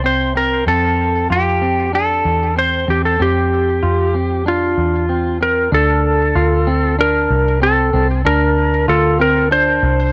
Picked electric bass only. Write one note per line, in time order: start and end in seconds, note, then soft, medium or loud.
0.00 0.63 C2 medium
0.67 1.27 F2 medium
1.31 2.21 F2 medium
2.25 2.85 E2 medium
2.88 3.18 E2 medium
3.20 3.80 F2 medium
3.83 4.74 F2 medium
4.78 5.68 E2 medium
5.72 6.32 D2 loud
6.36 7.26 D2 loud
7.30 7.90 C2 medium
7.94 8.24 C2 medium
8.25 8.85 D2 loud
8.88 9.79 D2 medium
9.83 10.12 C2 medium